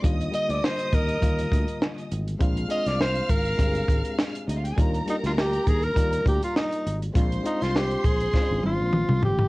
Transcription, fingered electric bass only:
X:1
M:4/4
L:1/16
Q:"Swing 16ths" 1/4=101
K:Eb
V:1 name="Fingered electric bass" clef=bass
E,,2 z D,, z2 E,,2 E,,2 D,, z3 A,,,2 | B,,,2 z C,,3 A,,,2 G,,,2 A,,, z3 D,,2 | E,,2 z D,,3 E,,2 E,,2 D,, z3 A,,,2 | B,,,2 z C,,3 B,,,2 z A,,, A,,, B,,,2 C,, G,,,2 |]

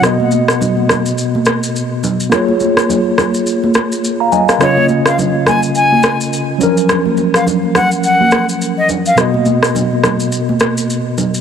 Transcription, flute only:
X:1
M:4/4
L:1/16
Q:"Swing 16ths" 1/4=105
K:Cblyd
V:1 name="Flute"
z16 | z16 | d2 z f z2 a z a3 z4 z | z3 f z2 g z g3 z2 e z f |
z16 |]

